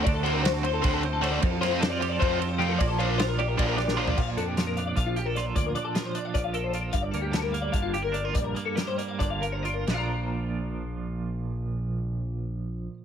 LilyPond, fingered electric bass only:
\new Staff \with { instrumentName = "Fingered electric bass" } { \clef bass \time 7/8 \key bes \major \tempo 4 = 152 d,2 d,4. | f,2 f,4. | bes,,2 bes,,4. | bes,,8 f,4. bes,,4. |
d,8 r4. bes,,4. | g,,8 d,4. g,,4. | bes,,8 r4. g,,4. | bes,,2.~ bes,,8~ |
bes,,2.~ bes,,8 | }